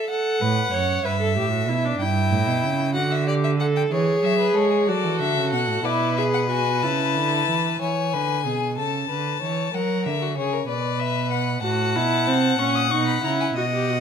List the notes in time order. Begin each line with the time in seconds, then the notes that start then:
0.10 A4 F#5
0.41 A2 B4
0.73 F#2 C#5
1.04 G2 B4 E5
1.21 A4
1.36 A2 G4
1.52 F#4
1.68 B2 E4
1.85 D4
1.99 G2 E4 G5
2.31 A2
2.48 B2
2.63 C#3
2.95 D3 F#4 F#5
3.11 E5
3.27 G4 D5
3.44 E5
3.59 A4 F#5
3.76 G5
3.91 E3 G#4 C#5
4.23 F#3 E5
4.39 B4
4.55 G#3 A4 C#5
4.70 G#4
4.87 F#3 F#4 A4 D5
5.03 E3
5.20 D3 E5
5.36 C#3
5.52 B2 F#5
5.68 A2
5.84 B2 E4 B4 D5
6.17 G#4 E5
6.34 F#5
6.50 F#4 G#5
6.83 C#3 E4 A5
7.15 D3
7.49 E3
7.81 E3 C#5 G#5
8.14 D3 B4
8.46 B2 G#4
8.78 C#3 A4 A5
9.10 D3 B4
9.42 E3 C#5
9.74 F#3 A#4 F#5
10.06 D3 E5
10.22 F#4
10.37 C#3 G#4 C#5
10.53 A#4
10.68 B2 B4 D5
10.99 E5
11.31 F#5
11.63 A2 F#4 F#5 A5
11.96 B2 E4
12.27 C3 C4
12.59 A#2 C#4 C#6
12.75 D#6
12.91 B2 D#4 C#6
13.07 B5
13.24 C#3 E4 A#5
13.40 G#5
13.56 B2 F#4 D#5 F#5
13.73 G4
13.90 F#4